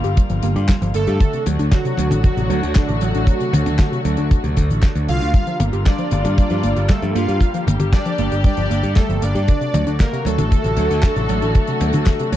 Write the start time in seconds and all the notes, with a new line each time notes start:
Already playing: D3 G3 A#3 F4
0.04 G1 G4, closed hi-hat
0.17 G3, kick, closed hi-hat
0.29 G1 F3, closed hi-hat
0.42 G1 A#3, closed hi-hat
0.56 G2 G4, closed hi-hat
0.68 G3, kick, snare, clap, closed hi-hat
0.82 G1 F3, closed hi-hat
0.94 G1 A3 A#3 A4, closed hi-hat
1.07 G2 G4, closed hi-hat
1.20 D3 F#3 A3 F#4, kick, closed hi-hat
1.33 C3, closed hi-hat
1.46 D2 F#3, closed hi-hat, high tom
1.59 D2 D4, closed hi-hat
1.71 D3 F#3 F#4, kick, snare, clap, closed hi-hat
1.85 C3, closed hi-hat
1.98 D2 F#3, closed hi-hat, high tom
2.11 A1 D4, closed hi-hat, high tom
2.24 D3 F#3 F#4, kick, closed hi-hat
2.37 A1 C3, closed hi-hat
2.50 D2 F#3, closed hi-hat
2.63 D2 D4, closed hi-hat
2.75 D3 D4, kick, snare, clap, closed hi-hat
2.89 A1 C3, closed hi-hat
3.01 A1 F#3 F#4, closed hi-hat
3.14 A1 D4, closed hi-hat
3.27 D3, kick, closed hi-hat
3.40 C3, closed hi-hat
3.53 D2 F#3, closed hi-hat, high tom
3.66 D2 D4, closed hi-hat, high tom
3.79 D3, kick, snare, clap, closed hi-hat
3.92 C3, closed hi-hat
4.05 D2 F#3, closed hi-hat
4.17 D2 D4, closed hi-hat
4.31 D3, kick, closed hi-hat
4.44 D2 C3, closed hi-hat
4.57 D2 D3, kick, closed hi-hat
4.70 A1 D3, closed hi-hat
4.82 D3, kick, snare, clap, closed hi-hat
4.95 D2 D3, closed hi-hat
5.08 C2 D3 F4 F5, closed hi-hat
5.21 D2 D4, closed hi-hat
5.34 G3 A#3 F4, kick, closed hi-hat
5.47 F3, closed hi-hat
5.60 G1 A#3, closed hi-hat, high tom
5.73 G1 G4, closed hi-hat
5.86 G3 D4 D5, kick, snare, clap, closed hi-hat
5.98 F3, closed hi-hat
6.11 G1 A#3, closed hi-hat, high tom
6.25 G2 G4, closed hi-hat, high tom
6.37 G3 D4 D5, kick, closed hi-hat
6.50 G2 F3, closed hi-hat
6.63 G1 A#3, closed hi-hat
6.76 G1 G4, closed hi-hat
6.89 G3 A3 A4, kick, snare, clap, closed hi-hat
7.02 G2 F3, closed hi-hat
7.15 G2 A#3 F4 F5, closed hi-hat
7.28 G2 G4, closed hi-hat
7.41 G3 G4, kick, closed hi-hat
7.54 F3, closed hi-hat
7.67 G1 A#3, closed hi-hat, high tom
7.80 G1 G4, closed hi-hat, high tom
7.93 G3 D4 D5, kick, snare, clap, closed hi-hat
8.05 F3, closed hi-hat
8.18 G1 A#3, closed hi-hat
8.32 G1 G4, closed hi-hat
8.44 G3 D4 D5, kick, closed hi-hat
8.57 G1 F3, closed hi-hat
8.70 G1 A#3, closed hi-hat
8.83 G2 G4, closed hi-hat
8.96 G3 A3 A4, kick, snare, clap, closed hi-hat
9.09 G1 F3, closed hi-hat
9.22 G1 A#3 D4 D5, closed hi-hat
9.35 G2 G4, closed hi-hat
9.48 D3 F#3 A3 F#4, kick, closed hi-hat
9.61 C3, closed hi-hat
9.74 D2 F#3, closed hi-hat, high tom
9.87 D2 D4, closed hi-hat
10.00 D3 A#3 A#4, kick, snare, clap, closed hi-hat
10.13 C3, closed hi-hat
10.25 D2 F#3 A3 A4, closed hi-hat, high tom
10.38 A1 D4, closed hi-hat, high tom
10.52 D3, kick, closed hi-hat
10.64 A1 C3, closed hi-hat
10.77 D2 F#3, closed hi-hat
10.90 D2 D4, closed hi-hat
11.03 D3, kick, snare, clap, closed hi-hat
11.16 A1 C3, closed hi-hat
11.29 A1 F#3, closed hi-hat
11.42 A1 D4, closed hi-hat
11.55 D3, kick, closed hi-hat
11.67 C3, closed hi-hat
11.80 D2 F#3, closed hi-hat, high tom
11.93 D2 D4, closed hi-hat, high tom
12.06 D3, kick, snare, clap, closed hi-hat
12.19 C3, closed hi-hat
12.32 D2 F#3, closed hi-hat